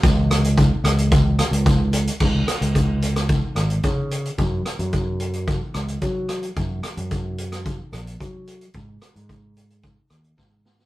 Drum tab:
CC |----------------|x---------------|----------------|----------------|
HH |x-xxx-xxx-xxx-xx|--xxx-xxx-xxx-xx|x-xxx-xxx-xxx-xx|x-xxx-xxx-xxx-xx|
SD |--r---r---r-----|--r----r--r-----|--r-------r---r-|--r----r--r-----|
BD |o---o---o---o---|o---o---o---o---|o---o---o---o---|o---o---o---o---|

CC |----------------|
HH |x-xxx-xxx-xx----|
SD |--r-------r-o-oo|
BD |o---o---o---o---|